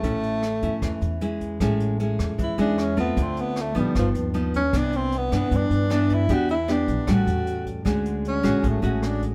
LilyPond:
<<
  \new Staff \with { instrumentName = "Tenor saxophone" } { \time 4/4 \key a \major \tempo 4 = 154 a2. r4 | r2 e'8 d'8 cis'8 b8 | c'8 b8 a8 g8 f8 r4 cis'8 | d'8 c'8 b4 d'4. e'8 |
fis'8 e'8 d'4 fis'4. r8 | r4 cis'4 a4 d'8 r8 | }
  \new Staff \with { instrumentName = "Nylon-string guitar" } { \time 4/4 \key a \major << { <cis' e'>4 r8 <cis' e'>4. <gis cis' e'>4 | <gis cis' e'>4 <gis cis' e'>4. <gis cis' e'>4 <a c' f'>8~ | <a c' f'>4. <f b dis'>4. <f b dis'>8 r8 | <e b d'>4. <e b d'>4. <e b d'>4 |
<b d' g'>8 r8 <b d' g'>4 <g cis' fis'>2 | <gis cis' fis'>4. <gis cis' fis'>4 <gis cis' fis'>4. | } \\ { a,2 e2 | a,2 e2 | d2 g,2 | c2 g,2 |
e2 a,2 | d2 a,2 | } >> }
  \new Staff \with { instrumentName = "Upright bass" } { \clef bass \time 4/4 \key a \major a,,4. e,16 r16 e,8 e,4. | a,,4. e,16 r16 e,8 e,4. | d,4. a,,16 r16 g,,8 dis,4. | c,4. g,16 r16 g,8 g,4. |
e,4. b,,16 r16 a,,8 e,4. | d,4. a,,16 r16 a,,8 a,,4. | }
  \new DrumStaff \with { instrumentName = "Drums" } \drummode { \time 4/4 <hh bd>8 hh8 <hh ss>8 <hh bd>8 <hh bd ss>8 hh8 hh8 <hh bd>8 | <hh bd ss>8 hh8 hh8 <hh bd ss>8 <hh bd>8 hh8 <hh ss>8 <hh bd>8 | <hh bd>8 hh8 <hh ss>8 <hh bd>8 <hh bd ss>8 hh8 hh8 <hh bd>8 | <hh bd ss>8 hh8 hh8 <hh bd ss>8 <hh bd>8 hh8 <hh ss>8 <hh bd>8 |
<hh bd>8 hh8 <hh ss>8 <hh bd>8 <hh bd ss>8 hh8 hh8 <hh bd>8 | <hh bd ss>8 hh8 hh8 <hh bd ss>8 <hh bd>8 hh8 <hh ss>8 <hh bd>8 | }
>>